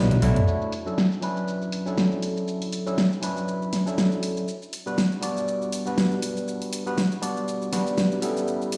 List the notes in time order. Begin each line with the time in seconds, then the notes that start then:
Already playing: B1 G3 B3 D4 E4 B4
0.11 closed hi-hat, mid tom
0.22 B1 A3 D4 E4 F#4 C#5, open hi-hat
0.36 closed hi-hat, mid tom
0.48 shaker
0.62 shaker
0.72 open hi-hat, shaker
0.86 F#3 C#4 D4 E4 A4, shaker
0.98 snare, shaker
1.12 shaker
1.21 F#3 C#4 D4 E4 B4, open hi-hat, shaker
1.37 shaker
1.48 shaker
1.62 shaker
1.72 open hi-hat, shaker
1.86 F#3 C#4 D4 E4 A4, shaker
1.98 snare, shaker
2.12 shaker
2.22 open hi-hat, shaker
2.37 shaker
2.48 shaker
2.62 open hi-hat, shaker
2.72 open hi-hat, shaker
2.86 F#3 C#4 D4 E4 A4, shaker
2.98 snare, shaker
3.12 shaker
3.22 F#3 C#4 D4 E4 B4, open hi-hat, shaker
3.37 shaker
3.48 shaker
3.62 shaker
3.73 snare, open hi-hat, shaker
3.86 F#3 C#4 D4 E4 A4, shaker
3.98 snare, shaker
4.12 shaker
4.23 open hi-hat, shaker
4.37 shaker
4.48 shaker
4.62 shaker
4.73 open hi-hat, shaker
4.86 G3 B3 D4 F#4 B4, shaker
4.98 snare, shaker
5.12 shaker
5.21 G3 B3 D4 F#4 D5, open hi-hat, shaker
5.37 shaker
5.48 shaker
5.62 shaker
5.72 open hi-hat, shaker
5.85 G3 B3 D4 F#4 B4, shaker
5.98 snare, shaker
6.12 shaker
6.22 open hi-hat, shaker
6.37 shaker
6.48 shaker
6.62 open hi-hat, shaker
6.73 open hi-hat, shaker
6.86 G3 B3 D4 F#4 B4, shaker
6.98 snare, shaker
7.12 shaker
7.22 G3 B3 D4 F#4 D5, open hi-hat, shaker
7.37 shaker
7.48 shaker
7.62 shaker
7.72 G3 B3 D4 F#4 B4, snare, open hi-hat, shaker
7.87 shaker
7.98 snare, shaker
8.12 shaker
8.21 G3 B3 C#4 E4 A4, open hi-hat, shaker
8.37 shaker
8.48 shaker
8.62 shaker
8.72 open hi-hat, shaker